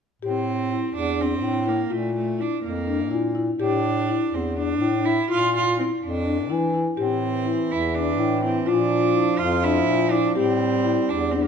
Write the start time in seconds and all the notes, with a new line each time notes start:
0.22 A2 C4 G4
0.71 E4
0.94 E2 D4
1.19 C4 D4
1.42 A2 E4
1.66 A#3 E4
1.90 A#2 A3 F4
2.15 A3
2.39 D4 E4
2.62 F2 A#3
2.87 D4
3.10 A#2 E4
3.35 E4
3.59 A2 D4 G4
4.08 E4
4.32 E2 C4
4.57 D4
4.81 A2 E4
5.04 E4
5.28 A#2 F4
5.56 F4
5.77 C4 E4
6.02 F2 D4
6.25 D4
6.50 E3 E4
6.74 E4
6.97 A2 E3 C4 G4
7.46 E4
7.70 E2 E4
7.88 E4
7.95 D4
8.18 A2 E4
8.43 C4 E4
8.66 A#2 F3 D4 F4
9.14 E4
9.39 F2 F4
9.63 D4 E4
9.87 A#2 E4
10.11 D4 E4
10.35 A2 G3 C4 G4
10.84 E4
11.09 E2 D4
11.31 C4 D4
11.43 A#3